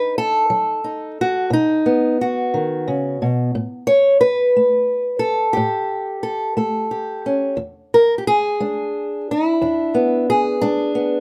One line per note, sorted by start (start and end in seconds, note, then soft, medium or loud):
0.00 0.83 D#4 soft
0.00 0.17 B4 loud
0.18 1.86 A4 loud
0.50 1.11 F#3 medium
0.84 1.18 D#4 soft
1.21 1.53 F#4 medium
1.50 2.11 B2 medium
1.50 2.20 D#4 medium
1.86 3.50 B3 soft
2.21 3.21 F#4 medium
2.54 2.87 D#3 medium
2.88 3.21 C#3 medium
3.22 3.55 B2 medium
3.55 4.15 A2 medium
3.87 4.20 C#5 loud
4.21 5.19 B4 loud
4.56 5.16 A3 medium
5.19 6.22 A4 medium
5.53 6.17 A2 medium
5.53 6.89 G4 medium
6.23 6.56 A4 medium
6.57 7.18 A3 medium
6.57 7.54 A4 soft
6.91 7.54 G4 soft
7.26 7.55 C#4 soft
7.57 8.18 E2 medium
7.94 8.18 A#4 loud
8.18 8.25 G4 medium
8.27 9.28 G#4 loud
8.60 9.21 G#3 medium
8.60 9.61 D4 soft
9.31 10.29 E4 medium
9.61 10.22 E2 medium
9.61 10.60 D4 soft
9.94 10.95 B3 medium
10.30 11.20 G#4 medium
10.61 11.20 G#3 medium
10.61 11.20 D4 loud
10.95 11.20 B3 soft